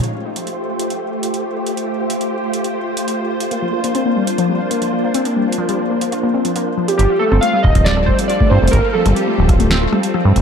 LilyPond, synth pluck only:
\new Staff \with { instrumentName = "Synth pluck" } { \time 4/4 \key g \minor \tempo 4 = 138 r1 | r1 | bes16 f16 f'16 bes16 c'16 bes16 g16 r16 f16 g16 r16 bes16 f16 f'16 bes16 c'16 | bes16 g16 r16 f16 g16 r16 bes16 f16 f'16 bes16 c'16 f16 bes16 r16 f16 g'16 |
f16 f'16 a16 c'16 a16 g16 r16 f16 g16 r16 a16 f16 f'16 a16 c'16 a16 | g16 r16 f16 g16 r16 a16 f16 f'16 a16 c'16 a16 g16 r16 f16 g16 r16 | }